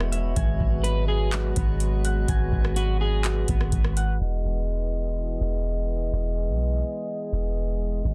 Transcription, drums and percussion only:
0.00 cross-stick loud
0.13 closed hi-hat medium
0.36 kick loud
0.36 closed hi-hat medium
0.60 kick medium
0.84 closed hi-hat medium
1.32 clap loud
1.32 closed hi-hat medium
1.56 kick medium
1.56 closed hi-hat medium
1.80 closed hi-hat medium
2.05 closed hi-hat medium
2.28 kick loud
2.28 closed hi-hat medium
2.52 kick medium
2.65 cross-stick loud
2.76 closed hi-hat medium
3.24 clap loud
3.24 closed hi-hat medium
3.48 kick medium
3.48 closed hi-hat medium
3.61 cross-stick loud
3.72 kick medium
3.72 closed hi-hat medium
3.85 cross-stick loud
3.97 closed hi-hat medium

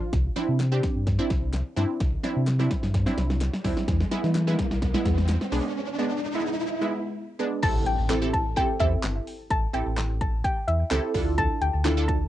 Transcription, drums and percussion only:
0.13 kick loud
0.13 snare medium
0.13 closed hi-hat medium
0.36 snare medium
0.36 closed hi-hat medium
0.60 snare medium
0.60 clap loud
0.60 closed hi-hat medium
0.83 kick loud
0.83 snare medium
0.83 closed hi-hat medium
1.07 kick medium
1.07 snare medium
1.07 closed hi-hat medium
1.30 kick loud
1.30 snare loud
1.30 closed hi-hat medium
1.53 snare medium
1.53 clap medium
1.53 closed hi-hat loud
1.77 snare loud
1.77 closed hi-hat medium
2.00 kick loud
2.00 snare loud
2.00 closed hi-hat loud
2.24 snare loud
2.24 closed hi-hat medium
2.47 snare medium
2.47 clap loud
2.47 closed hi-hat medium
2.60 snare loud
2.71 kick medium
2.71 snare loud
2.71 closed hi-hat medium
2.83 snare loud
2.94 kick medium
2.94 snare loud
2.94 closed hi-hat medium
3.06 snare loud
3.18 snare loud
3.18 closed hi-hat medium
3.30 snare loud
3.41 snare loud
3.41 clap medium
3.41 closed hi-hat loud
3.54 snare loud
3.65 kick loud
3.65 snare loud
3.65 open hi-hat medium
3.77 snare loud
3.88 kick loud
3.88 snare loud
3.88 closed hi-hat loud
4.00 snare loud
4.11 snare loud
4.11 closed hi-hat medium
4.24 snare loud
4.35 snare loud
4.35 clap medium
4.35 closed hi-hat medium
4.47 snare loud
4.59 kick loud
4.59 snare loud
4.59 closed hi-hat medium
4.71 snare loud
4.82 kick loud
4.82 snare loud
4.82 closed hi-hat medium
4.94 snare loud
5.05 kick loud
5.05 snare loud
5.05 closed hi-hat medium
5.18 snare loud
5.28 snare loud
5.28 clap medium
5.28 closed hi-hat loud
5.41 snare loud
5.52 open hi-hat medium
7.63 kick loud
7.63 closed hi-hat loud
7.63 crash loud
7.86 closed hi-hat medium
8.10 snare medium
8.10 clap loud
8.10 closed hi-hat medium
8.34 kick loud
8.34 closed hi-hat medium
8.57 kick loud
8.57 closed hi-hat medium
8.80 kick loud
8.80 closed hi-hat medium
9.03 snare loud
9.03 clap loud
9.03 clap medium
9.03 closed hi-hat loud
9.27 open hi-hat medium
9.51 kick loud
9.51 closed hi-hat loud
9.74 closed hi-hat medium
9.97 snare loud
9.97 clap loud
9.97 closed hi-hat medium
10.21 kick loud
10.21 closed hi-hat medium
10.44 kick medium
10.44 closed hi-hat medium
10.68 closed hi-hat medium
10.91 snare loud
10.91 clap loud
10.91 clap medium
10.91 closed hi-hat loud
11.15 kick loud
11.15 open hi-hat medium
11.38 kick loud
11.38 closed hi-hat loud
11.62 closed hi-hat medium
11.85 snare loud
11.85 clap loud
11.85 closed hi-hat medium
12.09 kick loud
12.09 closed hi-hat medium

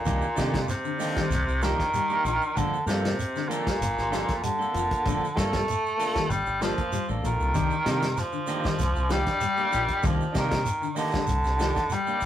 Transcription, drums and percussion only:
0.05 kick medium
0.05 closed hi-hat medium
0.05 shekere medium
0.21 shekere soft
0.37 kick medium
0.37 snare medium
0.37 closed hi-hat soft
0.37 shekere medium
0.54 kick medium
0.54 snare medium
0.54 closed hi-hat medium
0.54 shekere soft
0.68 snare soft
0.68 closed hi-hat medium
0.68 shekere medium
0.85 shekere soft
1.00 open hi-hat medium
1.00 shekere medium
1.16 kick medium
1.16 snare medium
1.16 closed hi-hat medium
1.16 shekere soft
1.31 snare soft
1.31 closed hi-hat medium
1.31 shekere medium
1.48 shekere soft
1.62 snare medium
1.62 closed hi-hat soft
1.62 shekere medium
1.80 kick medium
1.80 snare soft
1.80 closed hi-hat medium
1.80 shekere soft
1.94 closed hi-hat medium
1.94 shekere medium
2.10 shekere soft
2.25 closed hi-hat medium
2.25 shekere medium
2.41 shekere soft
2.57 kick medium
2.57 closed hi-hat medium
2.57 shekere medium
2.74 shekere soft
2.87 snare medium
2.87 closed hi-hat medium
2.87 shekere medium
3.05 snare medium
3.05 closed hi-hat medium
3.05 shekere soft
3.19 closed hi-hat medium
3.19 shekere medium
3.36 snare soft
3.36 shekere soft
3.51 closed hi-hat medium
3.51 shekere medium
3.67 kick medium
3.67 snare medium
3.67 closed hi-hat medium
3.67 shekere soft
3.82 closed hi-hat medium
3.82 shekere medium
3.98 snare soft
3.98 shekere soft
4.13 snare medium
4.13 closed hi-hat medium
4.13 shekere medium
4.28 kick medium
4.28 snare soft
4.28 closed hi-hat soft
4.28 shekere soft
4.43 closed hi-hat medium
4.43 shekere medium
4.61 shekere soft
4.74 closed hi-hat medium
4.74 shekere medium
4.91 kick medium
4.91 closed hi-hat soft
4.91 shekere soft
5.05 kick medium
5.05 closed hi-hat medium
5.05 shekere medium
5.24 shekere soft
5.37 kick medium
5.37 snare medium
5.37 closed hi-hat soft
5.37 shekere medium
5.53 kick medium
5.53 snare medium
5.53 closed hi-hat medium
5.53 shekere soft
5.68 closed hi-hat medium
5.68 shekere medium
5.86 shekere soft
5.99 open hi-hat medium
5.99 shekere medium
6.15 kick medium
6.15 snare medium
6.15 closed hi-hat soft
6.15 shekere soft
6.30 closed hi-hat medium
6.30 shekere medium
6.46 shekere soft
6.62 snare medium
6.62 closed hi-hat soft
6.62 shekere medium
6.78 kick medium
6.78 closed hi-hat soft
6.78 shekere soft
6.92 closed hi-hat medium
6.92 shekere medium
7.09 shekere soft
7.25 closed hi-hat soft
7.25 shekere medium
7.40 shekere soft
7.55 kick medium
7.55 closed hi-hat medium
7.55 shekere medium
7.71 shekere soft
7.86 snare medium
7.86 closed hi-hat medium
7.86 shekere medium
8.02 snare medium
8.02 closed hi-hat medium
8.02 shekere soft
8.17 snare soft
8.17 closed hi-hat medium
8.17 shekere medium
8.32 shekere soft
8.47 closed hi-hat soft
8.47 shekere medium
8.64 kick medium
8.64 snare medium
8.64 closed hi-hat medium
8.64 shekere soft
8.79 snare soft
8.79 closed hi-hat medium
8.79 shekere medium
8.96 shekere soft
9.10 snare medium
9.10 closed hi-hat medium
9.10 shekere medium
9.26 kick medium
9.26 snare soft
9.26 closed hi-hat soft
9.26 shekere soft
9.41 closed hi-hat medium
9.41 shekere medium
9.57 shekere soft
9.72 closed hi-hat medium
9.72 shekere medium
9.88 kick medium
9.88 closed hi-hat medium
9.88 shekere soft
10.03 kick medium
10.03 snare soft
10.03 closed hi-hat medium
10.03 shekere medium
10.20 shekere soft
10.35 kick medium
10.35 snare medium
10.35 closed hi-hat medium
10.35 shekere medium
10.51 kick medium
10.51 snare medium
10.51 closed hi-hat medium
10.51 shekere soft
10.65 closed hi-hat medium
10.65 shekere medium
10.83 shekere soft
10.96 open hi-hat medium
10.96 shekere medium
11.11 kick medium
11.11 snare medium
11.11 closed hi-hat medium
11.11 shekere soft
11.27 closed hi-hat medium
11.27 shekere medium
11.44 snare soft
11.44 shekere soft
11.59 snare medium
11.59 closed hi-hat soft
11.59 shekere medium
11.75 kick medium
11.75 snare soft
11.75 closed hi-hat soft
11.75 shekere soft
11.90 closed hi-hat medium
11.90 shekere medium
12.07 shekere soft
12.20 closed hi-hat medium
12.20 shekere medium

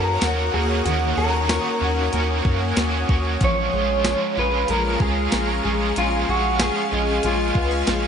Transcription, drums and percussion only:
0.21 snare loud
0.21 closed hi-hat medium
0.21 tambourine medium
0.86 closed hi-hat medium
1.49 snare loud
1.49 closed hi-hat medium
1.49 tambourine medium
2.13 closed hi-hat medium
2.45 kick loud
2.76 snare medium
2.76 closed hi-hat medium
2.76 tambourine medium
3.09 kick loud
3.41 kick loud
3.41 closed hi-hat medium
4.05 snare loud
4.05 closed hi-hat medium
4.05 tambourine medium
4.68 closed hi-hat medium
5.00 kick loud
5.32 snare medium
5.32 closed hi-hat medium
5.32 tambourine medium
5.96 closed hi-hat medium
6.60 snare loud
6.60 closed hi-hat medium
6.60 tambourine medium
7.23 closed hi-hat medium
7.55 kick medium
7.87 snare medium
7.87 closed hi-hat medium
7.87 tambourine medium

